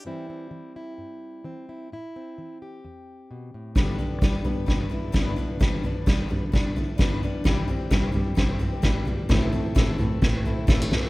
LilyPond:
<<
  \new Staff \with { instrumentName = "Steel-string acoustic guitar" } { \time 4/4 \key g \major \tempo 4 = 130 r1 | r1 | <g, d g b d' b'>8 <g b d' b'>8 <g, d g b d' b'>8 <g b d' b'>8 <g b d' b'>8 <g b d' b'>8 <g, d g b d' b'>8 <g b d' b'>8 | <g, d g b d' b'>8 <g b d' b'>8 <g, d g b d' b'>8 <g b d' b'>8 <g b d' b'>8 <g b d' b'>8 <g, d g b d' b'>8 <g b d' b'>8 |
<g, e g c' e' g'>8 <g c' e' g'>8 <g, e g c' e' g'>8 <g c' e' g'>8 <g c' e' g'>8 <g c' e' g'>8 <g, e g c' e' g'>8 <g c' e' g'>8 | <a, e a c' e' a'>8 <a c' e' a'>8 <a, e a c' e' a'>8 <a c' e' a'>8 <a c' e' a'>8 <a c' e' a'>8 <a, e a c' e' a'>8 <a c' e' a'>8 | }
  \new Staff \with { instrumentName = "Steel-string acoustic guitar" } { \time 4/4 \key g \major << { <e g c' e'>8 c'4 e'4. c'8 e'8 | e'8 c'4 g'2~ g'8 | <d b d' g'>8 d'4 b8 d'8 e'8 b8 d'8 | b8 d'4 b8 d'8 e'8 b8 d'8 |
g8 c'4 g8 c'8 g'8 g8 c'8 | <e a c' e'>8 c'4 a8 c'8 e'8 g16 a16 c'8 | } \\ { g,4 e4 g,4 e4 | a,4 e4 e,4 b,8 a,8 | g,4 d4 g,4 d4 | g,4 d4 g,4 d4 |
g,4 e4 g,4 e4 | a,4 e4 e,4 e4 | } >> }
  \new Staff \with { instrumentName = "Fingered electric bass" } { \clef bass \time 4/4 \key g \major r1 | r1 | g,4 g8 g,8 g,4 g,4 | g,4 g8 g,8 g,4 g,4 |
g,4 g8 g,8 g,4 aes,4 | a,4 a,8 a,8 a,4 a,4 | }
  \new DrumStaff \with { instrumentName = "Drums" } \drummode { \time 4/4 r4 r4 r4 r4 | r4 r4 r4 r4 | <bd sn tomfh>8 tomfh8 <bd sn tomfh>8 tomfh8 <bd sn tomfh>8 tomfh8 <bd sn tomfh>8 tomfh8 | <bd sn tomfh>8 tomfh8 <bd sn tomfh>8 tomfh8 <bd sn tomfh>8 tomfh8 <bd sn tomfh>8 tomfh8 |
<bd sn tomfh>8 tomfh8 <bd sn tomfh>8 tomfh8 <bd sn tomfh>8 tomfh8 <bd sn tomfh>8 tomfh8 | <bd sn tomfh>8 tomfh8 <bd sn tomfh>8 tomfh8 <bd sn tomfh>8 tomfh8 <bd sn tomfh>8 <sn tomfh>8 | }
>>